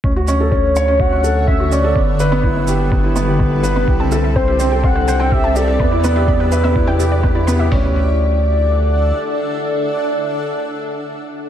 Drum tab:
HH |--------|--------|--------|--------|
SH |-x-x-x-x|-x-x-x-x|-x-x-x-x|-x-x-x-x|
FT |--------|--------|--------|--------|
BD |o-o-o-o-|o-o-o-o-|o-o-o-o-|o-o-o-o-|

HH |o-------|--------|
SH |--------|--------|
FT |o-------|--------|
BD |o-------|--------|